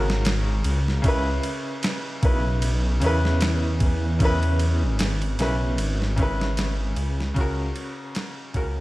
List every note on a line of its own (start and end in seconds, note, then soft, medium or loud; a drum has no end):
0.00 0.62 G#1 loud
0.00 1.02 C#3 loud
0.00 1.04 C#4 medium
0.00 1.06 F#4 medium
0.00 1.07 A#4 loud
0.10 snare medium
0.25 snare loud
0.25 ride medium
0.64 1.00 C#2 medium
0.64 ride medium
0.88 snare soft
1.02 1.40 C#2 loud
1.02 2.17 C#3 loud
1.02 2.19 C#4 medium
1.02 kick loud
1.02 ride medium
1.06 2.20 E4 loud
1.06 2.21 B4 loud
1.43 ride medium
1.83 snare loud
1.83 ride medium
2.22 2.99 B1 medium
2.22 2.98 C#3 medium
2.22 2.99 C#4 medium
2.22 2.99 E4 medium
2.22 3.00 B4 medium
2.22 kick loud
2.22 ride medium
2.62 ride medium
3.00 4.84 E2 medium
3.00 4.15 C#3 loud
3.00 4.16 C#4 loud
3.00 ride medium
3.04 4.17 E4 medium
3.04 4.18 B4 loud
3.25 snare soft
3.41 snare loud
3.41 ride medium
3.80 kick medium
3.80 ride medium
4.19 5.34 C#3 loud
4.19 5.35 C#4 medium
4.19 kick loud
4.19 ride medium
4.23 5.36 E4 medium
4.23 5.37 B4 loud
4.43 ride soft
4.59 ride medium
4.83 5.36 G#1 loud
4.99 snare loud
4.99 ride medium
5.22 ride soft
5.39 5.78 B1 medium
5.39 6.14 C#3 medium
5.39 6.15 C#4 medium
5.39 6.15 E4 medium
5.39 6.16 B4 medium
5.39 snare medium
5.39 ride medium
5.78 6.93 G#1 loud
5.78 ride medium
6.02 snare soft
6.16 7.31 C#3 loud
6.16 7.32 C#4 medium
6.16 kick loud
6.16 ride medium
6.20 7.33 E4 medium
6.20 7.34 B4 loud
6.41 snare medium
6.57 snare loud
6.57 ride medium
6.96 7.32 C#2 medium
6.96 ride medium
7.20 snare soft
7.34 7.72 C#2 loud
7.34 8.49 C#3 loud
7.34 8.50 C#4 medium
7.34 kick loud
7.34 ride medium
7.39 8.52 F#4 medium
7.39 8.53 A#4 loud
7.76 ride medium
8.15 snare loud
8.15 ride medium
8.54 8.80 C#2 medium
8.54 8.80 C#3 medium
8.54 8.80 C#4 medium
8.54 8.80 F#4 medium
8.54 8.80 A#4 medium
8.54 kick loud
8.54 ride medium